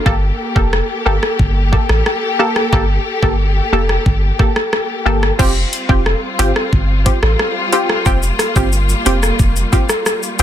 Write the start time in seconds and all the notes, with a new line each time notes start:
Already playing: A#3
0.06 G1 A#3 G4 A4, kick
0.56 F1 A#3 G4 A4, kick
0.73 cross-stick
1.06 G1 A#3 G4 A4
1.23 cross-stick
1.39 G1, kick
1.72 A#3 G4 A4, kick
1.89 A1, cross-stick
2.06 cross-stick
2.39 A#3 G4 A4
2.56 cross-stick
2.72 G1 A#3 G4 A4, kick
3.22 G1 A#3 G4 A4, kick
3.72 F1 A#3 G4 A4
3.89 cross-stick
4.06 G1, kick
4.39 A#3 G4 A4, kick
4.56 cross-stick
4.73 cross-stick
5.06 G1 A#3 G4 A4
5.23 cross-stick
5.39 F1 G3 C4 F4 G4, kick, crash
5.73 closed hi-hat
5.89 F1 C4 F4 G4, kick
6.06 cross-stick
6.39 G1 C4 F4 G4, closed hi-hat
6.56 cross-stick
6.73 G1, kick
7.06 C4 F4 G4, kick, closed hi-hat
7.23 A1, cross-stick
7.39 cross-stick
7.72 C4 F4 G4, closed hi-hat
7.89 cross-stick
8.06 F1 A#3 C4 F4 G4, kick, shaker
8.23 shaker
8.39 cross-stick, closed hi-hat, shaker
8.56 G1 C4 F4 G4, kick, shaker
8.73 shaker
8.89 shaker
9.06 F1 C4 F4 G4, closed hi-hat, shaker
9.23 cross-stick, shaker
9.39 F1, kick, shaker
9.56 shaker
9.72 C4 F4 G4, kick, closed hi-hat, shaker
9.89 cross-stick, shaker
10.06 cross-stick, shaker
10.23 shaker
10.39 A1 C4 F4, closed hi-hat, shaker